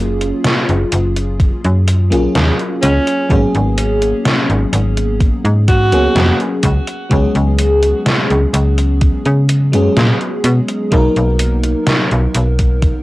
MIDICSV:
0, 0, Header, 1, 5, 480
1, 0, Start_track
1, 0, Key_signature, 6, "major"
1, 0, Tempo, 952381
1, 1664, Time_signature, 4, 2, 24, 8
1, 6567, End_track
2, 0, Start_track
2, 0, Title_t, "Alto saxophone"
2, 0, Program_c, 0, 65
2, 1423, Note_on_c, 0, 61, 90
2, 1713, Note_off_c, 0, 61, 0
2, 2864, Note_on_c, 0, 66, 97
2, 3227, Note_off_c, 0, 66, 0
2, 6567, End_track
3, 0, Start_track
3, 0, Title_t, "FM electric piano"
3, 0, Program_c, 1, 5
3, 0, Control_c, 1, 64, 127
3, 0, Note_on_c, 1, 54, 79
3, 0, Note_on_c, 1, 58, 70
3, 0, Note_on_c, 1, 61, 69
3, 0, Note_on_c, 1, 65, 72
3, 0, Note_on_c, 1, 68, 83
3, 1033, Note_off_c, 1, 54, 0
3, 1035, Note_off_c, 1, 58, 0
3, 1037, Note_off_c, 1, 61, 0
3, 1039, Note_off_c, 1, 65, 0
3, 1041, Note_off_c, 1, 68, 0
3, 1060, Note_on_c, 1, 54, 76
3, 1063, Note_on_c, 1, 58, 69
3, 1066, Note_on_c, 1, 61, 71
3, 1071, Note_on_c, 1, 65, 69
3, 1075, Note_on_c, 1, 68, 81
3, 1633, Note_off_c, 1, 54, 0
3, 1634, Note_off_c, 1, 58, 0
3, 1636, Note_off_c, 1, 61, 0
3, 1638, Note_off_c, 1, 65, 0
3, 1640, Note_off_c, 1, 68, 0
3, 1657, Note_on_c, 1, 54, 79
3, 1660, Note_on_c, 1, 58, 74
3, 1663, Note_on_c, 1, 59, 70
3, 1667, Note_on_c, 1, 61, 72
3, 1671, Control_c, 1, 64, 0
3, 1671, Note_on_c, 1, 68, 86
3, 1750, Control_c, 1, 64, 127
3, 2954, Note_off_c, 1, 54, 0
3, 2955, Note_off_c, 1, 58, 0
3, 2957, Note_off_c, 1, 59, 0
3, 2959, Note_off_c, 1, 61, 0
3, 2961, Note_off_c, 1, 68, 0
3, 2984, Note_on_c, 1, 54, 77
3, 2986, Note_on_c, 1, 58, 72
3, 2987, Note_on_c, 1, 59, 70
3, 2989, Note_on_c, 1, 61, 70
3, 2992, Note_on_c, 1, 68, 84
3, 3329, Note_off_c, 1, 54, 0
3, 3330, Note_off_c, 1, 58, 0
3, 3330, Note_off_c, 1, 59, 0
3, 3331, Note_off_c, 1, 61, 0
3, 3333, Note_off_c, 1, 68, 0
3, 3352, Control_c, 1, 64, 0
3, 3435, Control_c, 1, 64, 127
3, 3576, Note_on_c, 1, 54, 77
3, 3580, Note_on_c, 1, 56, 72
3, 3584, Note_on_c, 1, 59, 72
3, 3588, Note_on_c, 1, 61, 73
3, 3591, Note_on_c, 1, 68, 87
3, 4873, Note_off_c, 1, 54, 0
3, 4875, Note_off_c, 1, 56, 0
3, 4878, Note_off_c, 1, 59, 0
3, 4879, Note_off_c, 1, 61, 0
3, 4881, Note_off_c, 1, 68, 0
3, 4899, Note_on_c, 1, 54, 78
3, 4903, Note_on_c, 1, 56, 72
3, 4907, Note_on_c, 1, 59, 69
3, 4910, Note_on_c, 1, 61, 69
3, 4914, Note_on_c, 1, 68, 85
3, 5472, Note_off_c, 1, 54, 0
3, 5474, Note_off_c, 1, 56, 0
3, 5476, Note_off_c, 1, 59, 0
3, 5478, Note_off_c, 1, 61, 0
3, 5480, Note_off_c, 1, 68, 0
3, 5497, Note_on_c, 1, 54, 80
3, 5500, Note_on_c, 1, 58, 74
3, 5504, Note_on_c, 1, 59, 74
3, 5507, Note_on_c, 1, 63, 71
3, 5512, Control_c, 1, 64, 0
3, 5512, Note_on_c, 1, 70, 87
3, 5593, Control_c, 1, 64, 127
3, 6567, Note_off_c, 1, 54, 0
3, 6567, Note_off_c, 1, 58, 0
3, 6567, Note_off_c, 1, 59, 0
3, 6567, Note_off_c, 1, 63, 0
3, 6567, Note_off_c, 1, 70, 0
3, 6567, End_track
4, 0, Start_track
4, 0, Title_t, "FM bass"
4, 0, Program_c, 2, 39
4, 0, Note_on_c, 2, 30, 91
4, 161, Note_off_c, 2, 30, 0
4, 348, Note_on_c, 2, 30, 84
4, 425, Note_off_c, 2, 30, 0
4, 467, Note_on_c, 2, 30, 87
4, 761, Note_off_c, 2, 30, 0
4, 830, Note_on_c, 2, 42, 87
4, 1070, Note_on_c, 2, 34, 92
4, 1078, Note_off_c, 2, 42, 0
4, 1146, Note_off_c, 2, 34, 0
4, 1186, Note_on_c, 2, 39, 86
4, 1266, Note_off_c, 2, 39, 0
4, 1427, Note_on_c, 2, 37, 101
4, 1506, Note_off_c, 2, 37, 0
4, 1665, Note_on_c, 2, 32, 100
4, 1745, Note_off_c, 2, 32, 0
4, 1789, Note_on_c, 2, 32, 91
4, 2081, Note_off_c, 2, 32, 0
4, 2266, Note_on_c, 2, 32, 85
4, 2344, Note_off_c, 2, 32, 0
4, 2383, Note_on_c, 2, 32, 91
4, 2679, Note_off_c, 2, 32, 0
4, 2745, Note_on_c, 2, 44, 86
4, 2985, Note_on_c, 2, 37, 90
4, 2992, Note_off_c, 2, 44, 0
4, 3063, Note_off_c, 2, 37, 0
4, 3102, Note_on_c, 2, 41, 89
4, 3184, Note_off_c, 2, 41, 0
4, 3344, Note_on_c, 2, 37, 100
4, 3425, Note_off_c, 2, 37, 0
4, 3584, Note_on_c, 2, 37, 101
4, 3665, Note_off_c, 2, 37, 0
4, 3705, Note_on_c, 2, 37, 92
4, 3999, Note_off_c, 2, 37, 0
4, 4186, Note_on_c, 2, 37, 86
4, 4263, Note_off_c, 2, 37, 0
4, 4301, Note_on_c, 2, 37, 94
4, 4598, Note_off_c, 2, 37, 0
4, 4666, Note_on_c, 2, 49, 89
4, 4907, Note_on_c, 2, 42, 92
4, 4914, Note_off_c, 2, 49, 0
4, 4984, Note_off_c, 2, 42, 0
4, 5025, Note_on_c, 2, 46, 89
4, 5105, Note_off_c, 2, 46, 0
4, 5262, Note_on_c, 2, 47, 104
4, 5344, Note_off_c, 2, 47, 0
4, 5505, Note_on_c, 2, 35, 100
4, 5585, Note_off_c, 2, 35, 0
4, 5627, Note_on_c, 2, 35, 87
4, 5920, Note_off_c, 2, 35, 0
4, 6108, Note_on_c, 2, 35, 89
4, 6184, Note_off_c, 2, 35, 0
4, 6225, Note_on_c, 2, 35, 89
4, 6520, Note_off_c, 2, 35, 0
4, 6567, End_track
5, 0, Start_track
5, 0, Title_t, "Drums"
5, 107, Note_on_c, 9, 42, 48
5, 157, Note_off_c, 9, 42, 0
5, 224, Note_on_c, 9, 38, 117
5, 224, Note_on_c, 9, 42, 50
5, 275, Note_off_c, 9, 38, 0
5, 275, Note_off_c, 9, 42, 0
5, 347, Note_on_c, 9, 42, 24
5, 398, Note_off_c, 9, 42, 0
5, 463, Note_on_c, 9, 42, 85
5, 514, Note_off_c, 9, 42, 0
5, 586, Note_on_c, 9, 42, 50
5, 637, Note_off_c, 9, 42, 0
5, 704, Note_on_c, 9, 36, 115
5, 705, Note_on_c, 9, 42, 50
5, 754, Note_off_c, 9, 36, 0
5, 756, Note_off_c, 9, 42, 0
5, 828, Note_on_c, 9, 42, 25
5, 879, Note_off_c, 9, 42, 0
5, 945, Note_on_c, 9, 42, 84
5, 996, Note_off_c, 9, 42, 0
5, 1068, Note_on_c, 9, 42, 48
5, 1118, Note_off_c, 9, 42, 0
5, 1185, Note_on_c, 9, 38, 116
5, 1185, Note_on_c, 9, 42, 49
5, 1235, Note_off_c, 9, 38, 0
5, 1235, Note_off_c, 9, 42, 0
5, 1307, Note_on_c, 9, 42, 25
5, 1357, Note_off_c, 9, 42, 0
5, 1424, Note_on_c, 9, 42, 87
5, 1475, Note_off_c, 9, 42, 0
5, 1547, Note_on_c, 9, 42, 48
5, 1598, Note_off_c, 9, 42, 0
5, 1664, Note_on_c, 9, 36, 109
5, 1665, Note_on_c, 9, 42, 49
5, 1714, Note_off_c, 9, 36, 0
5, 1716, Note_off_c, 9, 42, 0
5, 1787, Note_on_c, 9, 42, 24
5, 1838, Note_off_c, 9, 42, 0
5, 1904, Note_on_c, 9, 42, 88
5, 1954, Note_off_c, 9, 42, 0
5, 2025, Note_on_c, 9, 42, 49
5, 2076, Note_off_c, 9, 42, 0
5, 2144, Note_on_c, 9, 38, 114
5, 2144, Note_on_c, 9, 42, 49
5, 2194, Note_off_c, 9, 38, 0
5, 2194, Note_off_c, 9, 42, 0
5, 2267, Note_on_c, 9, 42, 24
5, 2317, Note_off_c, 9, 42, 0
5, 2384, Note_on_c, 9, 42, 84
5, 2434, Note_off_c, 9, 42, 0
5, 2506, Note_on_c, 9, 42, 51
5, 2557, Note_off_c, 9, 42, 0
5, 2623, Note_on_c, 9, 36, 109
5, 2624, Note_on_c, 9, 42, 52
5, 2674, Note_off_c, 9, 36, 0
5, 2674, Note_off_c, 9, 42, 0
5, 2747, Note_on_c, 9, 42, 24
5, 2798, Note_off_c, 9, 42, 0
5, 2863, Note_on_c, 9, 42, 85
5, 2864, Note_on_c, 9, 36, 98
5, 2914, Note_off_c, 9, 36, 0
5, 2914, Note_off_c, 9, 42, 0
5, 2986, Note_on_c, 9, 42, 49
5, 3036, Note_off_c, 9, 42, 0
5, 3104, Note_on_c, 9, 38, 113
5, 3104, Note_on_c, 9, 42, 48
5, 3154, Note_off_c, 9, 38, 0
5, 3154, Note_off_c, 9, 42, 0
5, 3226, Note_on_c, 9, 42, 25
5, 3276, Note_off_c, 9, 42, 0
5, 3341, Note_on_c, 9, 42, 86
5, 3344, Note_on_c, 9, 36, 56
5, 3392, Note_off_c, 9, 42, 0
5, 3394, Note_off_c, 9, 36, 0
5, 3464, Note_on_c, 9, 42, 48
5, 3515, Note_off_c, 9, 42, 0
5, 3583, Note_on_c, 9, 42, 51
5, 3584, Note_on_c, 9, 36, 109
5, 3633, Note_off_c, 9, 42, 0
5, 3634, Note_off_c, 9, 36, 0
5, 3705, Note_on_c, 9, 42, 26
5, 3755, Note_off_c, 9, 42, 0
5, 3823, Note_on_c, 9, 42, 88
5, 3873, Note_off_c, 9, 42, 0
5, 3944, Note_on_c, 9, 42, 51
5, 3995, Note_off_c, 9, 42, 0
5, 4062, Note_on_c, 9, 38, 112
5, 4062, Note_on_c, 9, 42, 51
5, 4113, Note_off_c, 9, 38, 0
5, 4113, Note_off_c, 9, 42, 0
5, 4185, Note_on_c, 9, 42, 25
5, 4235, Note_off_c, 9, 42, 0
5, 4303, Note_on_c, 9, 42, 88
5, 4354, Note_off_c, 9, 42, 0
5, 4425, Note_on_c, 9, 42, 52
5, 4475, Note_off_c, 9, 42, 0
5, 4542, Note_on_c, 9, 42, 52
5, 4544, Note_on_c, 9, 36, 107
5, 4592, Note_off_c, 9, 42, 0
5, 4595, Note_off_c, 9, 36, 0
5, 4664, Note_on_c, 9, 42, 25
5, 4715, Note_off_c, 9, 42, 0
5, 4783, Note_on_c, 9, 42, 87
5, 4833, Note_off_c, 9, 42, 0
5, 4905, Note_on_c, 9, 42, 51
5, 4956, Note_off_c, 9, 42, 0
5, 5023, Note_on_c, 9, 38, 111
5, 5023, Note_on_c, 9, 42, 49
5, 5073, Note_off_c, 9, 38, 0
5, 5073, Note_off_c, 9, 42, 0
5, 5145, Note_on_c, 9, 42, 26
5, 5195, Note_off_c, 9, 42, 0
5, 5262, Note_on_c, 9, 42, 89
5, 5312, Note_off_c, 9, 42, 0
5, 5385, Note_on_c, 9, 42, 48
5, 5435, Note_off_c, 9, 42, 0
5, 5502, Note_on_c, 9, 42, 54
5, 5505, Note_on_c, 9, 36, 111
5, 5553, Note_off_c, 9, 42, 0
5, 5555, Note_off_c, 9, 36, 0
5, 5626, Note_on_c, 9, 42, 26
5, 5676, Note_off_c, 9, 42, 0
5, 5742, Note_on_c, 9, 42, 93
5, 5792, Note_off_c, 9, 42, 0
5, 5864, Note_on_c, 9, 42, 52
5, 5915, Note_off_c, 9, 42, 0
5, 5981, Note_on_c, 9, 38, 117
5, 5981, Note_on_c, 9, 42, 53
5, 6031, Note_off_c, 9, 38, 0
5, 6031, Note_off_c, 9, 42, 0
5, 6105, Note_on_c, 9, 42, 27
5, 6155, Note_off_c, 9, 42, 0
5, 6222, Note_on_c, 9, 42, 92
5, 6273, Note_off_c, 9, 42, 0
5, 6345, Note_on_c, 9, 42, 53
5, 6347, Note_on_c, 9, 36, 58
5, 6395, Note_off_c, 9, 42, 0
5, 6397, Note_off_c, 9, 36, 0
5, 6463, Note_on_c, 9, 42, 54
5, 6464, Note_on_c, 9, 36, 112
5, 6514, Note_off_c, 9, 36, 0
5, 6514, Note_off_c, 9, 42, 0
5, 6567, End_track
0, 0, End_of_file